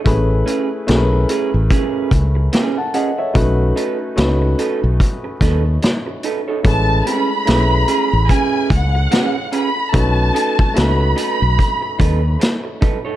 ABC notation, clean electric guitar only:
X:1
M:4/4
L:1/16
Q:"Swing 16ths" 1/4=73
K:Alyd
V:1 name="Clean electric guitar"
z2 [CGB] z3 [CGB] z [CGB]2 z2 [CGB] z [CGB] z | z2 [DAB] z3 [DAB] z3 [DAB] z3 [DAB] [DAc] | z2 [CGB] z3 [CGB] z [CGB]2 z2 [CGB] z [CGB] z | z2 [DAB] z3 [DAB] z3 [DAB] z3 [DAB] [DAc] |]